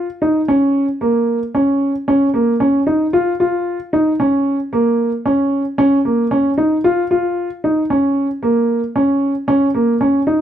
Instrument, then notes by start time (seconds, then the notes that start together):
grand piano
0.22 D#4
0.48 C#4
1.01 A#3
1.55 C#4
2.08 C#4
2.34 A#3
2.60 C#4
2.87 D#4
3.13 F4
3.40 F4
3.93 D#4
4.20 C#4
4.73 A#3
5.26 C#4
5.78 C#4
6.05 A#3
6.31 C#4
6.58 D#4
6.84 F4
7.11 F4
7.64 D#4
7.90 C#4
8.43 A#3
8.96 C#4
9.48 C#4
9.75 A#3
10.01 C#4
10.27 D#4